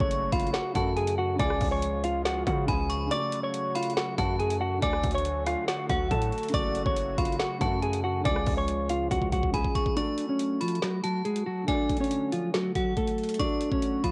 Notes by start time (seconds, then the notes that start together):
Already playing: C#3 F#3 A3 F#4 A4 C#6
0.00 F#1 C#5 C#6, kick
0.11 closed hi-hat
0.32 F#1 F4 F5 B5, kick, closed hi-hat
0.40 closed hi-hat
0.47 closed hi-hat
0.54 F#4 F#5, snare, closed hi-hat
0.73 F#2 C#3 A3 F#4 F#5 A5, kick, closed hi-hat
0.78 A4
0.97 G#4 G#5, closed hi-hat
1.07 closed hi-hat
1.18 F#4 F#5
1.35 C#3 G#3 D5
1.39 C#2 C#3 F3 G#3 F4 G#5 D6, kick, closed hi-hat
1.45 G#4
1.50 cross-stick
1.61 C#2, kick, open hi-hat
1.71 C#5 C#6
1.82 closed hi-hat
2.04 F4 F5, closed hi-hat
2.25 F#4 F#5, snare, closed hi-hat
2.47 C#3 F#4 F#5, kick, closed hi-hat
2.66 C#2 C#3 G#3 F4 G#4 G#5 B5, kick, closed hi-hat
2.71 G#4
2.90 C#6, closed hi-hat
3.06 C#3 A3
3.11 F#3 A3 F#4 D5 C#6 D6, closed hi-hat
3.16 A4
3.32 closed hi-hat
3.43 C#5 C#6
3.54 closed hi-hat
3.75 F4 F5 B5, closed hi-hat
3.83 closed hi-hat
3.90 closed hi-hat
3.97 F#4 F#5, snare, closed hi-hat
4.18 F#2 F#4 F#5 A5, kick, closed hi-hat
4.39 G#4 G#5, closed hi-hat
4.50 closed hi-hat
4.61 F#4 F#5
4.78 D3 A3
4.82 D2 D3 F#3 F#4 D5 G#5 D6, kick, closed hi-hat
4.87 A4
4.93 cross-stick
5.04 D2, kick, closed hi-hat, open hi-hat
5.11 C#5, closed hi-hat
5.15 C#6, closed hi-hat
5.25 closed hi-hat
5.47 F4 F5, cross-stick, closed hi-hat
5.68 F#4 F#5, snare, closed hi-hat
5.90 D2 F#4 F#5, kick, closed hi-hat
6.11 A2 A4 A5, kick, closed hi-hat
6.22 closed hi-hat
6.32 closed hi-hat
6.38 closed hi-hat
6.43 closed hi-hat
6.49 C#3 A3, closed hi-hat
6.54 F#1 C#3 F#4 D5 C#6 D6, kick, closed hi-hat
6.59 A4
6.75 closed hi-hat
6.86 F#1 C#5 C#6, kick
6.96 closed hi-hat
7.18 F#1 F4 F5 B5, kick, closed hi-hat
7.25 closed hi-hat
7.32 closed hi-hat
7.40 F#4 F#5, snare, closed hi-hat
7.59 F#2 C#3 A3 F#4 F#5 A5, kick, closed hi-hat
7.64 A4
7.82 G#4 G#5, closed hi-hat
7.93 closed hi-hat
8.04 F#4 F#5
8.21 C#3 G#3
8.25 C#2 F3 G#3 F4 D5 G#5 D6, kick, closed hi-hat
8.30 G#4
8.36 cross-stick
8.46 C#2, kick, open hi-hat
8.57 C#5 C#6
8.68 closed hi-hat
8.89 F4 F5, closed hi-hat
9.11 C#2 F#4 F#5, kick, closed hi-hat
9.22 kick
9.32 F#4 F#5, kick, closed hi-hat
9.43 kick
9.51 C#3 G#3 F4 G#4 G#5 B5, kick, closed hi-hat
9.56 G#4
9.65 kick
9.75 C#6, kick, closed hi-hat
9.86 kick
9.95 F#3 A3 D4 F#4 D5 C#6, closed hi-hat
10.02 A4
10.18 closed hi-hat
10.29 C#4 C#5
10.39 closed hi-hat
10.61 F3 F4 B5, closed hi-hat
10.68 closed hi-hat
10.75 closed hi-hat
10.82 F#3 F#4, snare, closed hi-hat
11.04 F#3 F#4 A5, closed hi-hat
11.25 G#3 G#4, closed hi-hat
11.36 closed hi-hat
11.46 F#3 F#4
11.63 D3 A3
11.68 D3 A3 D4 F#4 D5 G#5, kick, closed hi-hat
11.73 A4
11.89 kick, closed hi-hat
11.97 C#4, closed hi-hat
12.01 C#5, closed hi-hat
12.11 closed hi-hat
12.32 F3 F4, closed hi-hat
12.54 F#3 F#4, snare, closed hi-hat
12.75 F#3 F#4 F#5, kick, closed hi-hat
12.97 A3 A4, kick, closed hi-hat
13.07 closed hi-hat
13.18 closed hi-hat
13.23 closed hi-hat
13.29 closed hi-hat
13.34 A3, closed hi-hat
13.39 D4 F#4 D5 C#6, kick, closed hi-hat
13.44 A4
13.61 closed hi-hat
13.72 C#4 C#5, kick
13.82 closed hi-hat
14.04 F3 F4 B5, kick, closed hi-hat